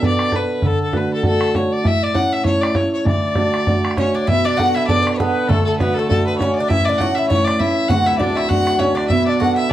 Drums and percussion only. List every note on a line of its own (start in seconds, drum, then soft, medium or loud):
0.03 bodhran medium
0.19 bodhran medium
0.32 bodhran medium
0.62 bodhran medium
0.72 bodhran soft
0.93 bodhran medium
1.23 bodhran medium
1.41 bodhran medium
1.55 bodhran medium
1.85 bodhran medium
1.93 bodhran soft
2.15 bodhran medium
2.45 bodhran medium
2.63 bodhran medium
2.75 bodhran medium
3.06 bodhran medium
3.14 bodhran soft
3.35 bodhran medium
3.54 bodhran medium
3.67 bodhran medium
3.85 bodhran medium
3.91 bodhran medium
3.97 bodhran medium
4.28 bodhran medium
4.37 bodhran soft
4.59 bodhran medium
4.89 bodhran medium
5.07 bodhran medium
5.20 bodhran medium
5.50 bodhran loud
5.59 bodhran soft
5.80 bodhran medium
6.11 bodhran medium
6.40 bodhran medium
6.71 bodhran medium
6.80 bodhran soft
7.00 bodhran medium
7.31 bodhran medium
7.47 bodhran medium
7.60 bodhran medium
7.90 bodhran medium
7.98 bodhran soft
8.20 bodhran medium
8.37 bodhran soft
8.51 bodhran medium
8.67 bodhran medium
8.80 bodhran medium
8.97 bodhran medium
9.10 bodhran medium
9.19 bodhran soft
9.42 bodhran medium